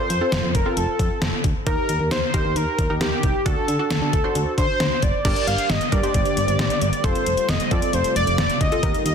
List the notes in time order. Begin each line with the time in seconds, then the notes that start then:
Already playing: C4 F4 A4 C5
0.10 F2, closed hi-hat
0.21 C4 F4 A4
0.32 F1, snare, closed hi-hat
0.43 F2
0.55 F1 A#4, kick, closed hi-hat
0.66 C4 F4 A4
0.77 F1 A4, closed hi-hat
0.99 F2, kick, closed hi-hat
1.22 F1, snare, closed hi-hat
1.44 D2, kick, closed hi-hat
1.67 D#2 D#4 G4 A#4, kick, closed hi-hat
1.89 D#2, closed hi-hat
2.00 D#2
2.11 D#2 C5, snare, closed hi-hat
2.34 D#2 D#4 G4 A#4, kick, closed hi-hat
2.45 D#2
2.56 D#2 A#4, closed hi-hat
2.79 D#2, kick, closed hi-hat
2.90 D#2 D#4 G4 A#4
3.01 D#2 G4, snare, closed hi-hat
3.23 C2, kick, closed hi-hat
3.46 D2 D4 F#4 A4, kick, closed hi-hat
3.68 D3, closed hi-hat
3.79 D4 F#4 A4
3.90 D2 A4, snare, closed hi-hat
4.02 D3
4.13 D2, kick, closed hi-hat
4.24 D4 F#4 C5
4.35 D2, closed hi-hat
4.58 D3 C5, kick, closed hi-hat
4.80 D2, snare, closed hi-hat
5.02 F#1 D5, kick, closed hi-hat
5.25 G1 D3 G3 A#3 D4 G4 A#4 D5, kick, closed hi-hat, crash
5.36 closed hi-hat
5.47 G1 F5, closed hi-hat
5.58 closed hi-hat
5.70 G1 D#5, snare, closed hi-hat
5.81 closed hi-hat
5.92 G2 D4 G4 A#4 D5, kick, closed hi-hat
6.03 D4 G4 C5, closed hi-hat
6.14 G1, kick, closed hi-hat
6.25 closed hi-hat
6.37 G1, closed hi-hat
6.48 G1, closed hi-hat
6.59 A1, snare, closed hi-hat
6.70 closed hi-hat
6.81 G1, closed hi-hat
6.93 closed hi-hat
7.04 F1 C3 A3 C4 F4 A4 C5, kick, closed hi-hat
7.15 closed hi-hat
7.26 F1, closed hi-hat
7.37 closed hi-hat
7.49 F1 D#5, snare, closed hi-hat
7.60 closed hi-hat
7.71 F2 C4 F4 A4 D5, kick, closed hi-hat
7.82 closed hi-hat
7.93 F1 C5, closed hi-hat
8.04 closed hi-hat
8.16 F1 D5, closed hi-hat
8.27 F1, closed hi-hat
8.38 F1, snare, closed hi-hat
8.50 closed hi-hat
8.61 D2 D#5, kick, closed hi-hat
8.72 C4 F4 A4, closed hi-hat
8.83 D#2 D#3 A#3 D#4 G4 A#4, kick, closed hi-hat
8.94 closed hi-hat
9.05 D#2 D#5, closed hi-hat